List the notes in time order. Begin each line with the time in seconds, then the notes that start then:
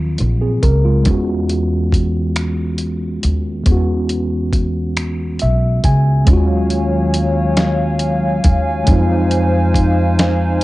Already playing: D#2 F3 F#3 A#3 C4 F4
0.18 A#1, closed hi-hat
0.41 C4 G#4
0.63 C#2 A#4, kick, closed hi-hat
0.85 G#3 F4
1.03 E2 G#3 B3, kick, closed hi-hat
1.08 C#4 F#4
1.49 closed hi-hat
1.92 kick, closed hi-hat
2.36 finger snap, closed hi-hat
2.78 closed hi-hat
3.23 D#2, closed hi-hat
3.64 E2 G#3 B3, kick, closed hi-hat
3.70 C#4 F#4
4.09 closed hi-hat
4.53 kick, closed hi-hat
4.97 finger snap, closed hi-hat
5.39 B1 E5, closed hi-hat
5.84 C#2 G#5, kick, closed hi-hat
6.25 D#2 F#3 G#3 C#4 C#5 F5 G#5, kick, closed hi-hat
6.30 F4 F#4
6.70 closed hi-hat
7.14 closed hi-hat
7.57 snare, closed hi-hat
7.99 closed hi-hat
8.44 D#2, kick, closed hi-hat
8.84 G#3 C4 D#4 C5, kick, closed hi-hat
8.88 F2 D#4 F4
9.31 closed hi-hat
9.74 kick, closed hi-hat
10.19 snare, closed hi-hat